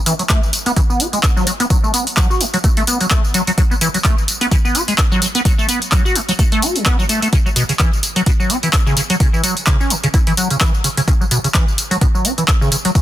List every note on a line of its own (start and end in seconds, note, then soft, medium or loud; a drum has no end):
0.06 0.13 E3 medium
0.06 open hi-hat loud
0.06 tambourine medium
0.19 0.23 F#3 medium
0.19 closed hi-hat soft
0.19 tambourine soft
0.29 0.40 A3 medium
0.29 kick loud
0.29 clap loud
0.29 closed hi-hat medium
0.29 tambourine soft
0.43 tambourine soft
0.53 open hi-hat loud
0.53 tambourine medium
0.66 0.72 B3 loud
0.66 closed hi-hat soft
0.66 tambourine soft
0.76 0.81 E3 loud
0.76 kick loud
0.76 closed hi-hat medium
0.76 tambourine soft
0.90 1.02 B3 medium
0.90 tambourine soft
1.00 1.07 F#4 medium
1.00 open hi-hat loud
1.00 tambourine medium
1.13 1.19 G#3 medium
1.13 closed hi-hat soft
1.13 tambourine soft
1.23 kick loud
1.23 clap loud
1.23 closed hi-hat medium
1.23 tambourine soft
1.36 1.45 F#3 loud
1.36 tambourine soft
1.47 1.51 F#3 medium
1.47 open hi-hat loud
1.47 tambourine medium
1.60 1.66 B3 loud
1.60 closed hi-hat medium
1.60 tambourine soft
1.70 1.77 F#3 medium
1.70 kick loud
1.70 closed hi-hat medium
1.70 tambourine soft
1.83 1.92 A3 medium
1.83 tambourine soft
1.94 2.05 B3 medium
1.94 open hi-hat loud
1.94 tambourine medium
2.07 closed hi-hat soft
2.07 tambourine soft
2.17 2.28 F#3 medium
2.17 kick loud
2.17 clap loud
2.17 closed hi-hat medium
2.17 tambourine soft
2.30 2.42 F#4 medium
2.30 tambourine soft
2.41 2.45 F#3 medium
2.41 open hi-hat loud
2.41 tambourine medium
2.54 2.57 F#3 loud
2.54 closed hi-hat soft
2.54 tambourine soft
2.64 2.68 A3 medium
2.64 kick loud
2.64 closed hi-hat medium
2.64 tambourine soft
2.77 2.83 A3 loud
2.77 open hi-hat medium
2.77 tambourine soft
2.87 2.98 B3 medium
2.87 open hi-hat loud
2.87 tambourine medium
3.01 3.06 F#3 medium
3.01 closed hi-hat soft
3.01 tambourine soft
3.10 3.22 A3 medium
3.10 kick loud
3.10 clap loud
3.10 closed hi-hat medium
3.10 tambourine soft
3.24 tambourine soft
3.34 3.42 F#3 loud
3.34 open hi-hat medium
3.34 tambourine medium
3.47 3.51 F#3 loud
3.47 closed hi-hat medium
3.47 tambourine soft
3.58 3.62 F#3 loud
3.58 kick loud
3.58 closed hi-hat medium
3.58 tambourine soft
3.71 3.74 B3 medium
3.71 tambourine soft
3.81 3.88 E3 loud
3.81 open hi-hat loud
3.81 tambourine medium
3.94 3.98 F#3 medium
3.94 closed hi-hat soft
3.94 tambourine soft
4.04 4.15 A3 medium
4.04 kick loud
4.04 clap loud
4.04 closed hi-hat medium
4.04 tambourine soft
4.18 tambourine soft
4.28 open hi-hat medium
4.28 tambourine medium
4.41 4.47 B3 loud
4.41 closed hi-hat medium
4.41 tambourine soft
4.51 4.56 E3 loud
4.51 kick loud
4.51 closed hi-hat medium
4.51 tambourine soft
4.65 4.77 B3 medium
4.65 tambourine soft
4.75 4.82 F#4 medium
4.75 open hi-hat loud
4.75 tambourine medium
4.88 4.94 G#3 medium
4.88 closed hi-hat medium
4.88 tambourine soft
4.98 kick medium
4.98 clap loud
4.98 closed hi-hat medium
4.98 tambourine soft
5.12 5.20 F#3 loud
5.12 tambourine soft
5.22 5.26 F#3 medium
5.22 open hi-hat medium
5.22 tambourine medium
5.35 5.41 B3 loud
5.35 closed hi-hat medium
5.35 tambourine soft
5.45 5.52 F#3 medium
5.45 kick loud
5.45 closed hi-hat medium
5.45 tambourine soft
5.58 5.67 A3 medium
5.58 tambourine soft
5.69 5.79 B3 medium
5.69 open hi-hat loud
5.69 tambourine medium
5.82 closed hi-hat medium
5.82 tambourine soft
5.92 6.03 F#3 medium
5.92 kick loud
5.92 clap loud
5.92 closed hi-hat medium
5.92 tambourine soft
6.05 6.17 F#4 medium
6.05 tambourine soft
6.16 6.20 F#3 medium
6.16 open hi-hat loud
6.16 tambourine medium
6.29 6.32 F#3 loud
6.29 closed hi-hat medium
6.29 tambourine soft
6.39 6.43 A3 medium
6.39 kick loud
6.39 closed hi-hat medium
6.39 tambourine soft
6.52 6.64 A3 loud
6.52 open hi-hat medium
6.52 tambourine soft
6.62 6.77 F#4 loud
6.62 open hi-hat loud
6.62 tambourine medium
6.76 6.84 F#3 medium
6.76 closed hi-hat medium
6.76 tambourine soft
6.86 6.97 B3 loud
6.86 kick loud
6.86 clap loud
6.86 closed hi-hat medium
6.86 tambourine soft
6.99 7.05 F#3 medium
6.99 tambourine soft
7.09 7.20 A3 medium
7.09 open hi-hat loud
7.09 tambourine medium
7.22 7.28 A3 medium
7.22 closed hi-hat medium
7.22 tambourine soft
7.33 7.37 C#3 loud
7.33 kick loud
7.33 closed hi-hat medium
7.33 tambourine soft
7.46 7.49 F#3 medium
7.46 tambourine soft
7.56 7.63 B2 loud
7.56 open hi-hat loud
7.56 tambourine medium
7.69 7.73 C#3 medium
7.69 closed hi-hat medium
7.69 tambourine soft
7.79 7.90 E3 medium
7.79 kick loud
7.79 clap loud
7.79 closed hi-hat medium
7.79 tambourine soft
7.93 tambourine soft
8.03 open hi-hat loud
8.03 tambourine medium
8.16 8.22 F#3 loud
8.16 closed hi-hat medium
8.16 tambourine soft
8.26 8.31 B2 loud
8.26 kick loud
8.26 closed hi-hat medium
8.26 tambourine soft
8.40 8.52 F#3 medium
8.40 tambourine soft
8.50 8.57 C#4 medium
8.50 open hi-hat loud
8.50 tambourine medium
8.63 8.69 E3 medium
8.63 closed hi-hat medium
8.63 tambourine soft
8.73 kick loud
8.73 clap loud
8.73 closed hi-hat medium
8.73 tambourine soft
8.86 8.95 C#3 loud
8.86 tambourine soft
8.97 9.01 C#3 medium
8.97 open hi-hat loud
8.97 tambourine medium
9.10 9.16 F#3 loud
9.10 closed hi-hat medium
9.10 tambourine soft
9.20 9.27 C#3 medium
9.20 kick loud
9.20 closed hi-hat medium
9.20 tambourine soft
9.33 9.42 E3 medium
9.33 tambourine soft
9.44 9.54 F#3 medium
9.44 open hi-hat loud
9.44 tambourine medium
9.57 closed hi-hat medium
9.57 tambourine soft
9.67 9.78 C#3 medium
9.67 kick loud
9.67 clap loud
9.67 closed hi-hat medium
9.67 tambourine soft
9.80 9.92 C#4 medium
9.80 tambourine soft
9.90 9.95 C#3 medium
9.90 open hi-hat loud
9.90 tambourine medium
10.04 10.07 C#3 loud
10.04 closed hi-hat medium
10.04 tambourine soft
10.14 10.18 E4 medium
10.14 kick loud
10.14 closed hi-hat medium
10.14 tambourine soft
10.27 10.33 E3 loud
10.27 open hi-hat medium
10.27 tambourine soft
10.37 10.48 F#3 medium
10.37 open hi-hat loud
10.37 tambourine medium
10.50 10.56 C#3 medium
10.50 closed hi-hat soft
10.50 tambourine soft
10.61 10.72 E3 medium
10.61 kick loud
10.61 clap loud
10.61 closed hi-hat medium
10.61 tambourine soft
10.74 tambourine soft
10.84 10.89 C#3 medium
10.84 open hi-hat loud
10.84 tambourine medium
10.97 11.01 C#3 loud
10.97 closed hi-hat medium
10.97 tambourine soft
11.08 11.12 C#3 loud
11.08 kick loud
11.08 closed hi-hat medium
11.08 tambourine soft
11.21 11.24 F#3 medium
11.21 tambourine soft
11.31 11.38 B2 loud
11.31 open hi-hat loud
11.31 tambourine medium
11.44 11.48 C#3 medium
11.44 closed hi-hat soft
11.44 tambourine soft
11.54 11.65 E3 medium
11.54 kick loud
11.54 clap loud
11.54 closed hi-hat medium
11.54 tambourine soft
11.68 tambourine soft
11.78 open hi-hat loud
11.78 tambourine medium
11.91 11.97 F#3 loud
11.91 closed hi-hat soft
11.91 tambourine soft
12.01 12.06 B2 loud
12.01 kick loud
12.01 closed hi-hat medium
12.01 tambourine soft
12.15 12.26 F#3 medium
12.15 tambourine soft
12.25 12.32 C#4 medium
12.25 open hi-hat loud
12.25 tambourine medium
12.38 12.44 E3 medium
12.38 closed hi-hat soft
12.38 tambourine soft
12.48 kick loud
12.48 clap loud
12.48 closed hi-hat medium
12.48 tambourine soft
12.61 12.70 C#3 loud
12.61 tambourine soft
12.72 12.76 C#3 medium
12.72 open hi-hat loud
12.72 tambourine medium
12.85 12.91 F#3 loud
12.85 closed hi-hat medium
12.85 tambourine soft
12.95 13.02 C#3 medium
12.95 kick loud
12.95 closed hi-hat medium
12.95 tambourine soft